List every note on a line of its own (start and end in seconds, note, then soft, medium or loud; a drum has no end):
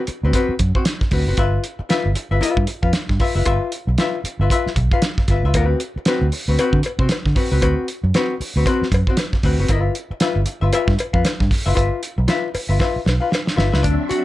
0.07 muted hollow-body jazz guitar stroke soft
0.07 muted fingered electric bass stroke soft
0.07 closed hi-hat medium
0.23 0.31 D2 loud
0.23 0.32 C4 medium
0.23 0.33 F#4 medium
0.23 0.34 B4 medium
0.33 0.53 C4 medium
0.33 0.53 F#4 medium
0.33 0.54 B4 medium
0.33 kick medium
0.33 closed hi-hat loud
0.49 muted fingered electric bass stroke soft
0.59 0.71 F#2 medium
0.59 muted hollow-body jazz guitar stroke soft
0.59 kick medium
0.59 closed hi-hat medium
0.75 0.84 C4 medium
0.75 0.85 F#4 medium
0.75 0.86 C5 medium
0.75 kick medium
0.85 snare loud
0.85 closed hi-hat medium
1.01 muted hollow-body jazz guitar stroke soft
1.01 kick medium
1.01 snare soft
1.11 1.23 D2 loud
1.11 1.28 C4 medium
1.11 1.27 F#4 medium
1.11 1.27 B4 medium
1.11 kick loud
1.11 snare soft
1.11 open hi-hat medium
1.27 1.35 F#1 medium
1.27 1.40 C4 soft
1.27 1.38 F#4 medium
1.27 1.37 B4 medium
1.37 1.57 G1 loud
1.37 1.62 F4 medium
1.37 1.63 B4 loud
1.37 1.63 E5 loud
1.37 kick loud
1.37 closed hi-hat loud
1.64 closed hi-hat medium
1.79 muted hollow-body jazz guitar stroke soft
1.79 muted fingered electric bass stroke soft
1.89 2.09 F4 medium
1.89 2.09 B4 medium
1.89 2.10 E5 loud
1.89 snare loud
1.89 closed hi-hat medium
2.06 2.13 G1 medium
2.15 muted hollow-body jazz guitar stroke soft
2.15 closed hi-hat medium
2.31 2.39 G1 medium
2.31 2.40 F4 soft
2.31 2.41 B4 medium
2.31 2.41 E5 medium
2.41 2.63 F4 medium
2.41 2.63 B4 medium
2.41 2.63 E5 medium
2.41 muted fingered electric bass stroke soft
2.41 closed hi-hat medium
2.57 2.65 G2 loud
2.57 kick medium
2.67 muted hollow-body jazz guitar stroke soft
2.67 closed hi-hat medium
2.83 2.91 F2 medium
2.83 2.92 F4 medium
2.83 2.93 B4 medium
2.83 2.94 F5 medium
2.83 kick medium
2.93 muted hollow-body jazz guitar stroke soft
2.93 snare loud
2.93 closed hi-hat medium
3.09 3.17 G2 medium
3.09 muted hollow-body jazz guitar stroke soft
3.09 kick medium
3.09 snare soft
3.20 3.35 F4 medium
3.20 3.35 B4 medium
3.20 3.34 E5 medium
3.20 kick loud
3.20 snare soft
3.20 open hi-hat medium
3.35 3.43 F#1 medium
3.35 3.44 F4 soft
3.35 3.45 B4 soft
3.35 3.46 E5 medium
3.45 3.57 G1 loud
3.45 3.70 F4 loud
3.45 3.71 B4 loud
3.45 3.71 E5 loud
3.45 kick loud
3.45 closed hi-hat medium
3.72 closed hi-hat medium
3.87 3.95 B1 medium
3.87 muted hollow-body jazz guitar stroke soft
3.98 4.17 F4 medium
3.98 4.18 B4 medium
3.98 4.18 E5 loud
3.98 snare loud
3.98 closed hi-hat medium
4.24 muted fingered electric bass stroke soft
4.24 muted hollow-body jazz guitar stroke soft
4.24 closed hi-hat medium
4.39 4.47 G1 medium
4.39 4.50 F4 soft
4.39 4.50 B4 soft
4.39 4.51 E5 medium
4.50 4.70 F4 medium
4.50 4.70 B4 medium
4.50 4.70 E5 medium
4.50 kick medium
4.50 closed hi-hat medium
4.66 muted fingered electric bass stroke soft
4.66 snare soft
4.76 4.87 B1 medium
4.76 muted hollow-body jazz guitar stroke soft
4.76 kick medium
4.76 closed hi-hat medium
4.91 5.02 F4 medium
4.91 5.03 B4 medium
4.91 5.03 F5 medium
4.91 kick medium
5.02 muted hollow-body jazz guitar stroke soft
5.02 snare loud
5.02 closed hi-hat medium
5.18 muted hollow-body jazz guitar stroke soft
5.18 kick medium
5.18 snare soft
5.28 5.40 G1 medium
5.28 5.45 F4 medium
5.28 5.44 B4 medium
5.28 5.44 E5 medium
5.28 kick loud
5.28 snare soft
5.28 closed hi-hat medium
5.43 5.51 C#2 medium
5.43 5.56 F4 soft
5.43 5.55 B4 medium
5.43 5.55 E5 medium
5.54 5.73 D2 loud
5.54 5.79 C4 medium
5.54 5.79 F#4 medium
5.54 5.79 B4 medium
5.54 kick loud
5.54 closed hi-hat loud
5.54 cowbell medium
5.80 closed hi-hat medium
5.96 muted fingered electric bass stroke medium
5.96 muted hollow-body jazz guitar stroke soft
6.05 6.25 C4 medium
6.05 6.26 F#4 medium
6.05 6.26 B4 medium
6.05 snare loud
6.05 closed hi-hat medium
6.05 cowbell medium
6.21 6.29 D2 loud
6.32 muted hollow-body jazz guitar stroke soft
6.32 open hi-hat medium
6.48 6.55 D2 medium
6.48 6.58 C4 soft
6.48 6.59 F#4 soft
6.48 6.59 B4 medium
6.58 6.78 C4 medium
6.58 6.78 F#4 medium
6.58 6.78 B4 medium
6.58 muted fingered electric bass stroke soft
6.58 closed hi-hat medium
6.58 cowbell medium
6.73 6.81 D3 medium
6.73 kick medium
6.83 muted hollow-body jazz guitar stroke soft
6.83 closed hi-hat medium
6.83 cowbell medium
6.99 7.06 C3 loud
6.99 7.09 C4 medium
6.99 7.09 F#4 medium
6.99 7.10 C5 medium
6.99 kick medium
7.09 muted hollow-body jazz guitar stroke soft
7.09 snare loud
7.09 closed hi-hat medium
7.09 cowbell medium
7.25 7.33 D3 medium
7.25 muted hollow-body jazz guitar stroke soft
7.25 kick medium
7.25 snare soft
7.35 7.51 C4 medium
7.35 7.51 F#4 medium
7.35 7.50 B4 medium
7.35 kick loud
7.35 snare soft
7.35 open hi-hat medium
7.52 7.59 C#2 medium
7.52 7.60 C4 medium
7.52 7.61 F#4 soft
7.52 7.62 B4 medium
7.61 7.73 D2 loud
7.61 7.86 C4 medium
7.61 7.86 F#4 medium
7.61 7.86 B4 medium
7.61 kick medium
7.61 closed hi-hat medium
7.61 cowbell medium
7.88 closed hi-hat medium
8.04 8.11 F#2 medium
8.04 muted hollow-body jazz guitar stroke soft
8.14 8.33 C4 medium
8.14 8.34 F#4 loud
8.14 8.34 B4 medium
8.14 snare loud
8.14 closed hi-hat medium
8.14 cowbell medium
8.40 muted fingered electric bass stroke soft
8.40 muted hollow-body jazz guitar stroke soft
8.40 open hi-hat medium
8.56 8.63 D2 loud
8.56 8.65 C4 soft
8.56 8.67 F#4 medium
8.56 8.67 B4 medium
8.66 8.85 C4 medium
8.66 8.86 F#4 medium
8.66 8.86 B4 medium
8.66 kick medium
8.66 closed hi-hat loud
8.66 cowbell medium
8.82 muted fingered electric bass stroke soft
8.82 snare soft
8.92 9.03 F#2 medium
8.92 muted hollow-body jazz guitar stroke soft
8.92 kick loud
8.92 closed hi-hat medium
8.92 cowbell medium
9.07 9.17 C4 medium
9.07 9.18 F#4 medium
9.07 9.19 C5 medium
9.07 kick medium
9.17 snare loud
9.17 closed hi-hat medium
9.17 cowbell medium
9.33 muted hollow-body jazz guitar stroke soft
9.33 kick medium
9.33 snare soft
9.43 9.55 D2 medium
9.43 9.60 C4 medium
9.43 9.59 F#4 medium
9.43 9.58 B4 medium
9.43 kick loud
9.43 snare soft
9.43 open hi-hat medium
9.58 9.66 F#1 medium
9.58 9.71 C4 soft
9.58 9.69 F#4 soft
9.58 9.70 B4 medium
9.68 9.88 G1 loud
9.68 9.94 F4 medium
9.68 9.94 B4 medium
9.68 9.94 E5 medium
9.68 kick loud
9.68 closed hi-hat loud
9.68 cowbell medium
9.95 closed hi-hat medium
10.11 muted fingered electric bass stroke soft
10.11 muted hollow-body jazz guitar stroke medium
10.20 10.40 F4 medium
10.20 10.40 B4 medium
10.20 10.40 E5 medium
10.20 snare loud
10.20 closed hi-hat medium
10.20 cowbell medium
10.36 10.44 G1 medium
10.46 muted hollow-body jazz guitar stroke soft
10.46 closed hi-hat medium
10.61 10.70 G1 loud
10.61 10.71 F4 medium
10.61 10.72 B4 medium
10.61 10.73 E5 medium
10.72 10.92 F4 medium
10.72 10.92 B4 medium
10.72 10.93 E5 loud
10.72 muted fingered electric bass stroke soft
10.72 closed hi-hat medium
10.72 cowbell medium
10.88 10.96 G2 medium
10.88 kick loud
10.88 snare soft
10.98 muted hollow-body jazz guitar stroke soft
10.98 closed hi-hat medium
10.98 cowbell medium
11.13 11.22 F2 medium
11.13 11.24 F4 medium
11.13 11.25 B4 medium
11.13 11.25 F5 medium
11.13 kick loud
11.25 muted hollow-body jazz guitar stroke soft
11.25 snare loud
11.25 closed hi-hat medium
11.25 cowbell medium
11.40 11.48 G2 medium
11.40 muted hollow-body jazz guitar stroke soft
11.40 kick medium
11.40 snare soft
11.51 kick loud
11.51 snare soft
11.51 open hi-hat medium
11.66 11.74 F#1 medium
11.66 11.74 F4 medium
11.66 11.75 B4 medium
11.66 11.76 E5 medium
11.75 11.88 G1 loud
11.75 12.00 F4 medium
11.75 12.01 B4 medium
11.75 12.01 E5 medium
11.75 kick loud
11.75 closed hi-hat medium
11.75 cowbell medium
12.03 closed hi-hat medium
12.18 12.26 B1 medium
12.18 muted hollow-body jazz guitar stroke soft
12.28 12.47 F4 medium
12.28 12.48 B4 medium
12.28 12.48 E5 loud
12.28 snare loud
12.28 closed hi-hat medium
12.28 cowbell medium
12.54 muted hollow-body jazz guitar stroke soft
12.54 muted fingered electric bass stroke soft
12.54 open hi-hat medium
12.54 cowbell medium
12.69 12.77 G1 medium
12.69 12.78 F4 soft
12.69 12.79 B4 medium
12.69 12.80 E5 medium
12.79 12.99 F4 medium
12.79 12.99 B4 medium
12.79 13.00 E5 loud
12.79 kick medium
12.79 snare medium
12.79 cowbell medium
12.96 muted fingered electric bass stroke soft
13.05 13.18 B1 medium
13.05 muted hollow-body jazz guitar stroke soft
13.05 snare medium
13.05 cowbell medium
13.20 13.29 F4 medium
13.20 13.30 B4 medium
13.20 13.31 F5 medium
13.30 muted hollow-body jazz guitar stroke soft
13.30 snare medium
13.35 cowbell medium
13.46 muted hollow-body jazz guitar stroke soft
13.46 snare medium
13.56 13.69 G1 medium
13.56 13.72 F4 medium
13.56 13.72 B4 medium
13.56 13.71 E5 medium
13.56 snare loud
13.72 13.81 C#2 medium
13.72 13.85 F4 soft
13.72 13.85 B4 medium
13.72 13.84 E5 medium
13.72 snare loud
13.83 13.96 D2 loud
13.83 14.25 F#3 medium
13.83 14.25 C4 medium
13.83 14.10 D4 medium
13.83 14.25 D4 medium
13.83 14.25 E5 loud
13.83 kick loud
13.83 closed hi-hat medium
14.09 14.25 F#4 medium
14.09 muted fingered electric bass stroke soft
14.09 closed hi-hat medium